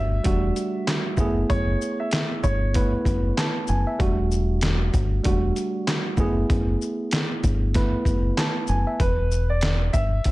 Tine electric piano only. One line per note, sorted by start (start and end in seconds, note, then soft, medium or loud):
0.00 0.24 G3 medium
0.00 0.24 A3 medium
0.00 0.25 D4 medium
0.00 0.26 F#4 medium
0.24 0.86 G3 medium
0.24 0.87 A3 medium
0.24 0.87 D4 medium
0.24 0.87 F#4 medium
1.18 2.19 A3 medium
1.18 2.20 B3 medium
1.18 2.20 E4 medium
1.18 2.20 G#4 loud
2.74 3.36 A3 medium
2.74 3.37 B3 medium
2.74 3.37 E4 medium
2.74 3.38 B4 medium
3.37 3.67 A5 medium
3.69 3.86 G#5 medium
3.87 4.17 E5 medium
3.99 4.84 G3 medium
3.99 4.84 A3 medium
3.99 4.85 D4 medium
3.99 4.85 F#4 medium
5.24 5.86 G3 medium
5.24 5.87 A3 medium
5.24 5.87 D4 medium
5.24 5.87 F#4 medium
6.18 7.19 A3 medium
6.18 7.20 B3 medium
6.18 7.20 E4 medium
6.18 7.20 G#4 loud
7.74 8.36 A3 medium
7.74 8.37 B3 medium
7.74 8.37 E4 medium
7.74 8.38 B4 medium
8.38 8.67 A5 medium
8.69 8.87 G#5 medium
8.87 8.99 E5 medium